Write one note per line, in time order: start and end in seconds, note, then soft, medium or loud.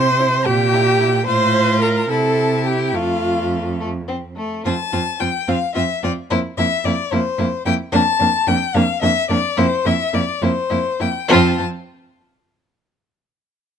0.00 0.32 C3 medium
0.00 0.47 C5 loud
0.00 0.47 C6 loud
0.20 0.28 E4 medium
0.45 1.13 A#2 medium
0.45 1.26 G4 loud
0.45 1.26 G5 loud
0.73 0.81 E4 medium
1.01 1.09 E4 medium
1.27 2.06 A2 medium
1.27 2.06 F4 medium
1.27 1.81 C5 loud
1.27 1.83 C6 loud
1.82 2.11 A#4 medium
1.82 2.09 A#5 loud
2.10 2.96 C3 medium
2.10 2.96 E4 medium
2.10 2.65 A4 medium
2.10 2.68 A5 loud
2.66 2.96 G4 medium
2.66 2.97 G5 medium
2.94 4.45 F2 medium
2.94 3.74 A3 medium
2.94 3.80 F4 medium
2.94 3.81 F5 loud
3.80 3.88 A3 medium
4.08 4.16 C4 medium
4.37 4.64 A3 medium
4.65 4.74 F2 medium
4.65 4.74 C4 medium
4.65 4.73 F4 medium
4.65 5.22 A5 loud
4.92 5.02 F2 medium
4.92 5.01 C4 medium
4.92 5.00 F4 medium
5.20 5.29 F2 medium
5.20 5.29 C4 medium
5.20 5.28 F4 medium
5.20 5.50 G5 loud
5.48 5.56 F2 medium
5.48 5.56 C4 medium
5.48 5.56 F4 medium
5.48 5.75 F5 loud
5.74 5.84 F2 medium
5.74 5.84 C4 medium
5.74 5.82 F4 medium
5.74 6.03 E5 loud
6.03 6.11 F2 medium
6.03 6.12 C4 medium
6.03 6.11 F4 medium
6.03 6.12 D5 loud
6.30 6.39 F2 medium
6.30 6.39 A#3 medium
6.30 6.39 E4 medium
6.30 6.38 C5 loud
6.58 6.66 F2 medium
6.58 6.67 A#3 medium
6.58 6.66 E4 medium
6.58 6.86 E5 loud
6.85 6.93 F2 medium
6.85 6.94 A#3 medium
6.85 6.94 E4 medium
6.85 7.13 D5 loud
7.12 7.20 F2 medium
7.12 7.21 A#3 medium
7.12 7.20 E4 medium
7.12 7.65 C5 loud
7.39 7.47 F2 medium
7.39 7.48 A#3 medium
7.39 7.47 E4 medium
7.65 7.74 F2 medium
7.65 7.74 A#3 medium
7.65 7.74 E4 medium
7.65 7.73 G5 loud
7.92 8.01 F2 loud
7.92 8.01 A#3 medium
7.92 8.00 D4 loud
7.92 8.49 A5 loud
8.19 8.28 F2 medium
8.19 8.29 A#3 medium
8.19 8.27 D4 medium
8.47 8.55 F2 medium
8.47 8.56 A#3 medium
8.47 8.55 D4 medium
8.47 8.76 G5 loud
8.74 8.83 F2 loud
8.74 8.84 A#3 medium
8.74 8.82 D4 medium
8.74 9.02 F5 loud
9.02 9.10 F2 loud
9.02 9.11 A#3 medium
9.02 9.10 D4 medium
9.02 9.29 E5 loud
9.30 9.38 F2 medium
9.30 9.38 A#3 medium
9.30 9.38 D4 medium
9.30 9.59 D5 loud
9.57 9.66 F2 loud
9.57 9.65 A#3 medium
9.57 9.65 E4 loud
9.57 9.88 C5 loud
9.85 9.94 F2 medium
9.85 9.93 A#3 medium
9.85 9.94 E4 medium
9.85 10.16 E5 loud
10.13 10.22 F2 medium
10.13 10.21 A#3 medium
10.13 10.21 E4 medium
10.13 10.44 D5 loud
10.42 10.50 F2 medium
10.42 10.50 A#3 medium
10.42 10.50 E4 medium
10.42 11.02 C5 loud
10.70 10.79 F2 medium
10.70 10.79 A#3 medium
10.70 10.78 E4 medium
11.00 11.09 F2 medium
11.00 11.09 A#3 medium
11.00 11.08 E4 medium
11.00 11.29 G5 loud
11.29 11.62 F2 loud
11.29 11.61 C4 medium
11.29 11.61 F4 loud
11.29 11.62 A5 loud